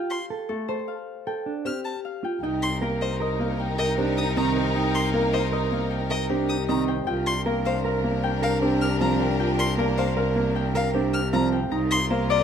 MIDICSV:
0, 0, Header, 1, 7, 480
1, 0, Start_track
1, 0, Tempo, 387097
1, 133, Time_signature, 6, 2, 24, 8
1, 15419, End_track
2, 0, Start_track
2, 0, Title_t, "Violin"
2, 0, Program_c, 0, 40
2, 127, Note_on_c, 0, 84, 59
2, 309, Note_off_c, 0, 84, 0
2, 2055, Note_on_c, 0, 89, 52
2, 2234, Note_off_c, 0, 89, 0
2, 2289, Note_on_c, 0, 81, 58
2, 2470, Note_off_c, 0, 81, 0
2, 3254, Note_on_c, 0, 84, 76
2, 3433, Note_off_c, 0, 84, 0
2, 3736, Note_on_c, 0, 75, 63
2, 3914, Note_off_c, 0, 75, 0
2, 4693, Note_on_c, 0, 75, 76
2, 4873, Note_off_c, 0, 75, 0
2, 5177, Note_on_c, 0, 87, 55
2, 5355, Note_off_c, 0, 87, 0
2, 5416, Note_on_c, 0, 82, 77
2, 5595, Note_off_c, 0, 82, 0
2, 6132, Note_on_c, 0, 84, 75
2, 6312, Note_off_c, 0, 84, 0
2, 6613, Note_on_c, 0, 75, 60
2, 6793, Note_off_c, 0, 75, 0
2, 7569, Note_on_c, 0, 75, 79
2, 7750, Note_off_c, 0, 75, 0
2, 8050, Note_on_c, 0, 87, 54
2, 8231, Note_off_c, 0, 87, 0
2, 8295, Note_on_c, 0, 82, 74
2, 8474, Note_off_c, 0, 82, 0
2, 9010, Note_on_c, 0, 84, 82
2, 9191, Note_off_c, 0, 84, 0
2, 9493, Note_on_c, 0, 77, 64
2, 9672, Note_off_c, 0, 77, 0
2, 10454, Note_on_c, 0, 77, 85
2, 10633, Note_off_c, 0, 77, 0
2, 10931, Note_on_c, 0, 89, 61
2, 11111, Note_off_c, 0, 89, 0
2, 11172, Note_on_c, 0, 82, 77
2, 11352, Note_off_c, 0, 82, 0
2, 11892, Note_on_c, 0, 84, 92
2, 12072, Note_off_c, 0, 84, 0
2, 12372, Note_on_c, 0, 77, 70
2, 12552, Note_off_c, 0, 77, 0
2, 13332, Note_on_c, 0, 77, 86
2, 13512, Note_off_c, 0, 77, 0
2, 13808, Note_on_c, 0, 89, 64
2, 13990, Note_off_c, 0, 89, 0
2, 14050, Note_on_c, 0, 82, 82
2, 14231, Note_off_c, 0, 82, 0
2, 14769, Note_on_c, 0, 84, 93
2, 14950, Note_off_c, 0, 84, 0
2, 15254, Note_on_c, 0, 75, 71
2, 15419, Note_off_c, 0, 75, 0
2, 15419, End_track
3, 0, Start_track
3, 0, Title_t, "Harp"
3, 0, Program_c, 1, 46
3, 0, Note_on_c, 1, 67, 63
3, 0, Note_on_c, 1, 69, 58
3, 0, Note_on_c, 1, 72, 68
3, 0, Note_on_c, 1, 77, 63
3, 0, Note_on_c, 1, 79, 58
3, 592, Note_off_c, 1, 69, 0
3, 607, Note_on_c, 1, 69, 54
3, 834, Note_off_c, 1, 72, 0
3, 849, Note_on_c, 1, 72, 65
3, 1073, Note_off_c, 1, 77, 0
3, 1088, Note_on_c, 1, 77, 45
3, 1557, Note_off_c, 1, 79, 0
3, 1572, Note_on_c, 1, 79, 53
3, 2032, Note_off_c, 1, 67, 0
3, 2047, Note_on_c, 1, 67, 49
3, 2524, Note_off_c, 1, 77, 0
3, 2539, Note_on_c, 1, 77, 48
3, 2768, Note_off_c, 1, 79, 0
3, 2783, Note_on_c, 1, 79, 51
3, 3004, Note_off_c, 1, 79, 0
3, 3019, Note_on_c, 1, 79, 71
3, 3029, Note_off_c, 1, 69, 0
3, 3035, Note_off_c, 1, 77, 0
3, 3500, Note_on_c, 1, 70, 63
3, 3728, Note_off_c, 1, 72, 0
3, 3742, Note_on_c, 1, 72, 75
3, 3985, Note_on_c, 1, 75, 56
3, 4444, Note_off_c, 1, 79, 0
3, 4459, Note_on_c, 1, 79, 65
3, 4684, Note_off_c, 1, 70, 0
3, 4699, Note_on_c, 1, 70, 59
3, 4915, Note_off_c, 1, 67, 0
3, 4930, Note_on_c, 1, 67, 59
3, 5406, Note_off_c, 1, 75, 0
3, 5421, Note_on_c, 1, 75, 55
3, 5637, Note_off_c, 1, 79, 0
3, 5652, Note_on_c, 1, 79, 64
3, 5879, Note_off_c, 1, 79, 0
3, 5894, Note_on_c, 1, 79, 84
3, 6361, Note_off_c, 1, 70, 0
3, 6376, Note_on_c, 1, 70, 61
3, 6600, Note_off_c, 1, 72, 0
3, 6614, Note_on_c, 1, 72, 81
3, 6838, Note_off_c, 1, 75, 0
3, 6853, Note_on_c, 1, 75, 56
3, 7308, Note_off_c, 1, 79, 0
3, 7323, Note_on_c, 1, 79, 62
3, 7552, Note_off_c, 1, 70, 0
3, 7567, Note_on_c, 1, 70, 61
3, 7790, Note_off_c, 1, 67, 0
3, 7805, Note_on_c, 1, 67, 64
3, 8273, Note_off_c, 1, 75, 0
3, 8288, Note_on_c, 1, 75, 57
3, 8516, Note_off_c, 1, 79, 0
3, 8531, Note_on_c, 1, 79, 66
3, 8749, Note_off_c, 1, 79, 0
3, 8764, Note_on_c, 1, 79, 86
3, 8789, Note_off_c, 1, 75, 0
3, 8792, Note_off_c, 1, 72, 0
3, 9233, Note_off_c, 1, 70, 0
3, 9248, Note_on_c, 1, 70, 67
3, 9502, Note_on_c, 1, 72, 81
3, 9741, Note_on_c, 1, 77, 55
3, 10197, Note_off_c, 1, 79, 0
3, 10212, Note_on_c, 1, 79, 72
3, 10436, Note_off_c, 1, 70, 0
3, 10451, Note_on_c, 1, 70, 60
3, 10675, Note_off_c, 1, 67, 0
3, 10689, Note_on_c, 1, 67, 63
3, 11157, Note_off_c, 1, 77, 0
3, 11172, Note_on_c, 1, 77, 65
3, 11396, Note_off_c, 1, 79, 0
3, 11411, Note_on_c, 1, 79, 72
3, 11636, Note_off_c, 1, 79, 0
3, 11651, Note_on_c, 1, 79, 85
3, 12121, Note_off_c, 1, 70, 0
3, 12136, Note_on_c, 1, 70, 74
3, 12360, Note_off_c, 1, 72, 0
3, 12375, Note_on_c, 1, 72, 81
3, 12595, Note_off_c, 1, 77, 0
3, 12610, Note_on_c, 1, 77, 64
3, 13075, Note_off_c, 1, 79, 0
3, 13090, Note_on_c, 1, 79, 79
3, 13314, Note_off_c, 1, 70, 0
3, 13329, Note_on_c, 1, 70, 65
3, 13545, Note_off_c, 1, 67, 0
3, 13560, Note_on_c, 1, 67, 64
3, 14030, Note_off_c, 1, 77, 0
3, 14045, Note_on_c, 1, 77, 63
3, 14271, Note_off_c, 1, 79, 0
3, 14286, Note_on_c, 1, 79, 70
3, 14527, Note_on_c, 1, 82, 86
3, 14545, Note_off_c, 1, 67, 0
3, 14548, Note_off_c, 1, 79, 0
3, 14994, Note_off_c, 1, 72, 0
3, 15009, Note_on_c, 1, 72, 70
3, 15249, Note_on_c, 1, 74, 97
3, 15419, Note_off_c, 1, 70, 0
3, 15419, Note_off_c, 1, 72, 0
3, 15419, Note_off_c, 1, 74, 0
3, 15419, Note_off_c, 1, 77, 0
3, 15419, Note_off_c, 1, 82, 0
3, 15419, End_track
4, 0, Start_track
4, 0, Title_t, "Clean electric guitar"
4, 0, Program_c, 2, 27
4, 0, Note_on_c, 2, 65, 59
4, 206, Note_off_c, 2, 65, 0
4, 377, Note_on_c, 2, 69, 52
4, 686, Note_off_c, 2, 69, 0
4, 854, Note_on_c, 2, 69, 60
4, 1165, Note_off_c, 2, 69, 0
4, 1575, Note_on_c, 2, 69, 60
4, 1813, Note_on_c, 2, 62, 45
4, 1885, Note_off_c, 2, 69, 0
4, 2124, Note_off_c, 2, 62, 0
4, 2771, Note_on_c, 2, 65, 49
4, 3009, Note_off_c, 2, 65, 0
4, 3014, Note_on_c, 2, 63, 58
4, 3325, Note_off_c, 2, 63, 0
4, 3491, Note_on_c, 2, 70, 64
4, 3804, Note_off_c, 2, 70, 0
4, 3971, Note_on_c, 2, 70, 71
4, 4284, Note_off_c, 2, 70, 0
4, 4696, Note_on_c, 2, 70, 70
4, 4939, Note_on_c, 2, 62, 62
4, 5006, Note_off_c, 2, 70, 0
4, 5247, Note_off_c, 2, 62, 0
4, 5417, Note_on_c, 2, 60, 72
4, 5658, Note_on_c, 2, 72, 64
4, 5726, Note_off_c, 2, 60, 0
4, 5899, Note_on_c, 2, 63, 65
4, 5966, Note_off_c, 2, 72, 0
4, 6206, Note_off_c, 2, 63, 0
4, 6371, Note_on_c, 2, 70, 57
4, 6684, Note_off_c, 2, 70, 0
4, 6849, Note_on_c, 2, 70, 81
4, 7163, Note_off_c, 2, 70, 0
4, 7571, Note_on_c, 2, 70, 73
4, 7812, Note_on_c, 2, 62, 59
4, 7884, Note_off_c, 2, 70, 0
4, 8124, Note_off_c, 2, 62, 0
4, 8294, Note_on_c, 2, 60, 74
4, 8533, Note_on_c, 2, 72, 63
4, 8605, Note_off_c, 2, 60, 0
4, 8771, Note_on_c, 2, 65, 65
4, 8844, Note_off_c, 2, 72, 0
4, 9084, Note_off_c, 2, 65, 0
4, 9249, Note_on_c, 2, 70, 69
4, 9563, Note_off_c, 2, 70, 0
4, 9730, Note_on_c, 2, 70, 82
4, 10043, Note_off_c, 2, 70, 0
4, 10446, Note_on_c, 2, 70, 79
4, 10692, Note_on_c, 2, 62, 61
4, 10762, Note_off_c, 2, 70, 0
4, 11004, Note_off_c, 2, 62, 0
4, 11172, Note_on_c, 2, 60, 77
4, 11411, Note_on_c, 2, 72, 70
4, 11484, Note_off_c, 2, 60, 0
4, 11653, Note_on_c, 2, 65, 71
4, 11724, Note_off_c, 2, 72, 0
4, 11965, Note_off_c, 2, 65, 0
4, 12131, Note_on_c, 2, 70, 67
4, 12444, Note_off_c, 2, 70, 0
4, 12607, Note_on_c, 2, 70, 87
4, 12923, Note_off_c, 2, 70, 0
4, 13332, Note_on_c, 2, 70, 83
4, 13574, Note_on_c, 2, 62, 71
4, 13644, Note_off_c, 2, 70, 0
4, 13885, Note_off_c, 2, 62, 0
4, 14054, Note_on_c, 2, 60, 81
4, 14292, Note_on_c, 2, 72, 71
4, 14365, Note_off_c, 2, 60, 0
4, 14533, Note_on_c, 2, 63, 72
4, 14604, Note_off_c, 2, 72, 0
4, 14844, Note_off_c, 2, 63, 0
4, 15008, Note_on_c, 2, 70, 66
4, 15323, Note_off_c, 2, 70, 0
4, 15419, End_track
5, 0, Start_track
5, 0, Title_t, "Violin section"
5, 0, Program_c, 3, 48
5, 3016, Note_on_c, 3, 63, 73
5, 3016, Note_on_c, 3, 70, 67
5, 8484, Note_off_c, 3, 63, 0
5, 8485, Note_off_c, 3, 70, 0
5, 8774, Note_on_c, 3, 70, 68
5, 8776, Note_on_c, 3, 62, 73
5, 14244, Note_off_c, 3, 62, 0
5, 14244, Note_off_c, 3, 70, 0
5, 14529, Note_on_c, 3, 65, 79
5, 14531, Note_on_c, 3, 70, 87
5, 15419, Note_off_c, 3, 65, 0
5, 15419, Note_off_c, 3, 70, 0
5, 15419, End_track
6, 0, Start_track
6, 0, Title_t, "Grand piano"
6, 0, Program_c, 4, 0
6, 611, Note_on_c, 4, 57, 52
6, 924, Note_off_c, 4, 57, 0
6, 2047, Note_on_c, 4, 60, 46
6, 2362, Note_off_c, 4, 60, 0
6, 3492, Note_on_c, 4, 58, 55
6, 3804, Note_off_c, 4, 58, 0
6, 4211, Note_on_c, 4, 58, 55
6, 4524, Note_off_c, 4, 58, 0
6, 4933, Note_on_c, 4, 60, 60
6, 5244, Note_off_c, 4, 60, 0
6, 5411, Note_on_c, 4, 51, 60
6, 5724, Note_off_c, 4, 51, 0
6, 6367, Note_on_c, 4, 58, 62
6, 6682, Note_off_c, 4, 58, 0
6, 7091, Note_on_c, 4, 58, 59
6, 7404, Note_off_c, 4, 58, 0
6, 7811, Note_on_c, 4, 60, 59
6, 8124, Note_off_c, 4, 60, 0
6, 8289, Note_on_c, 4, 51, 63
6, 8603, Note_off_c, 4, 51, 0
6, 9249, Note_on_c, 4, 58, 66
6, 9563, Note_off_c, 4, 58, 0
6, 9969, Note_on_c, 4, 58, 62
6, 10283, Note_off_c, 4, 58, 0
6, 10684, Note_on_c, 4, 60, 66
6, 11001, Note_off_c, 4, 60, 0
6, 11164, Note_on_c, 4, 53, 61
6, 11482, Note_off_c, 4, 53, 0
6, 12125, Note_on_c, 4, 58, 69
6, 12442, Note_off_c, 4, 58, 0
6, 12846, Note_on_c, 4, 58, 66
6, 13162, Note_off_c, 4, 58, 0
6, 13570, Note_on_c, 4, 60, 72
6, 13884, Note_off_c, 4, 60, 0
6, 14053, Note_on_c, 4, 53, 70
6, 14364, Note_off_c, 4, 53, 0
6, 15013, Note_on_c, 4, 58, 70
6, 15324, Note_off_c, 4, 58, 0
6, 15419, End_track
7, 0, Start_track
7, 0, Title_t, "Cello"
7, 0, Program_c, 5, 42
7, 3013, Note_on_c, 5, 36, 63
7, 8627, Note_off_c, 5, 36, 0
7, 8774, Note_on_c, 5, 36, 66
7, 14388, Note_off_c, 5, 36, 0
7, 14526, Note_on_c, 5, 36, 72
7, 15419, Note_off_c, 5, 36, 0
7, 15419, End_track
0, 0, End_of_file